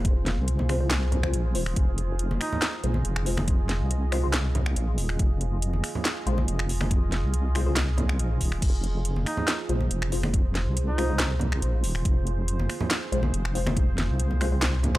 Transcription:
Already playing: F1 F4 G#4 C5
0.05 kick, closed hi-hat
0.26 snare, closed hi-hat, high conga
0.37 C2
0.48 closed hi-hat
0.59 high conga
0.69 G#3 F4 C5, finger snap, open hi-hat
0.81 G#3 F4 C5
0.91 snare, clap, closed hi-hat
1.12 closed hi-hat, low conga
1.23 G#3 F4 C5, finger snap, kick
1.33 A#1, closed hi-hat
1.55 D#1 G#3 F4 C5, open hi-hat
1.66 finger snap
1.76 F1 D#5, kick, closed hi-hat
1.98 closed hi-hat
2.19 closed hi-hat
2.31 high conga
2.40 D#4, finger snap, open hi-hat
2.53 low conga
2.62 snare, clap, closed hi-hat
2.84 A#1 G#3 F4 C5, closed hi-hat
2.94 high conga
3.05 F1, closed hi-hat
3.16 finger snap
3.26 G#3 F4 C5, open hi-hat
3.37 finger snap, high conga
3.48 kick, closed hi-hat
3.69 snare, closed hi-hat
3.80 C2
3.91 closed hi-hat
4.12 G#3 F4 C5, finger snap, open hi-hat
4.23 G#3 F4 C5
4.34 snare, clap, closed hi-hat
4.55 closed hi-hat, low conga
4.66 finger snap
4.76 A#1, closed hi-hat
4.98 D#1, open hi-hat
5.09 finger snap
5.19 F1, kick, closed hi-hat
5.41 closed hi-hat
5.62 closed hi-hat
5.73 high conga
5.84 finger snap, open hi-hat
5.95 low conga
6.05 snare, clap, closed hi-hat
6.26 A#1 G#3 F4 C5, closed hi-hat
6.38 high conga
6.48 F1, closed hi-hat
6.59 finger snap
6.69 open hi-hat
6.81 finger snap, high conga
6.91 kick, closed hi-hat
7.12 snare, closed hi-hat
7.23 C2
7.34 closed hi-hat
7.55 G#3 F4 C5, finger snap, open hi-hat
7.66 G#3 F4 C5
7.77 snare, clap, closed hi-hat
7.98 closed hi-hat, low conga
8.09 finger snap
8.19 A#1, closed hi-hat
8.41 D#1, kick, open hi-hat
8.52 finger snap
8.62 F1 C5, kick, closed hi-hat, crash
8.84 closed hi-hat
9.05 closed hi-hat
9.16 high conga
9.26 D#4, finger snap, open hi-hat
9.37 low conga
9.48 snare, clap, closed hi-hat
9.69 A#1 G#3 F4 C5, closed hi-hat
9.81 high conga
9.91 F1, closed hi-hat
10.02 finger snap
10.12 G#3 F4 C5, open hi-hat
10.23 finger snap, high conga
10.34 kick, closed hi-hat
10.55 snare, closed hi-hat
10.66 C2
10.77 closed hi-hat
10.88 D#4
10.98 G#3 F4 C5, finger snap, open hi-hat
11.09 G#3 F4 C5
11.19 snare, clap, closed hi-hat
11.39 closed hi-hat, low conga
11.52 finger snap
11.62 A#1, closed hi-hat
11.84 D#1, open hi-hat
11.95 finger snap
12.05 F1, kick, closed hi-hat
12.27 closed hi-hat
12.48 closed hi-hat
12.59 high conga
12.70 finger snap, open hi-hat
12.81 low conga
12.91 snare, clap, closed hi-hat
13.12 A#1 G#3 F4 C5, closed hi-hat
13.23 high conga
13.33 F1, closed hi-hat
13.45 finger snap
13.55 G#3 F4 C5, open hi-hat
13.67 finger snap, high conga
13.77 kick, closed hi-hat
13.98 snare, closed hi-hat, high conga
14.09 C2
14.20 closed hi-hat
14.31 high conga
14.41 G#3 F4 C5, finger snap, open hi-hat
14.52 G#3 F4 C5
14.62 snare, clap, closed hi-hat
14.83 closed hi-hat, low conga
14.95 G#3 F4 C5, finger snap, kick

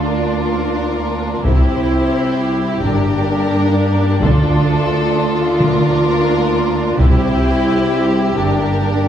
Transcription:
Already playing: D2 D4 F4
0.06 A#3 A#4
1.45 C2 G3 E4 G4 C5, taiko
2.83 G1 G2 A#3 D4 A#4
4.21 D2 A3 F4 A4, taiko
5.60 D3 A#3 D4 A#4
6.98 C2 G3 E4 G4 C5, taiko
8.37 G1 G2 A#3 D4 A#4

